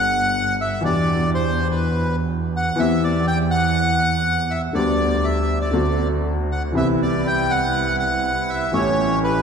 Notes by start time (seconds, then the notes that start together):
Already playing: G1 G2 G3 A3 D4 A4 F#5
0.61 E5
0.81 E2 B2 E3 D4
0.85 G4 D5
1.34 C5
1.71 B4
2.57 F#5
2.76 E2 E3 B3 C4
2.80 G4 E5
3.04 D5
3.27 G5
3.51 F#5
4.51 E5
4.73 D2 D3 G3 B3 G4 D5
5.24 E5
5.61 D5
5.73 D2 D3 A3 C4 F#4
6.52 F#5
6.72 C2 C3 E3 B3 C4 E4 B4
6.77 G4 E5
7.02 D5
7.27 G5
7.51 F#5
8.00 F#5
8.50 E5
8.72 A1 A2 E3 A3 C#4 G4 C#5
9.24 B4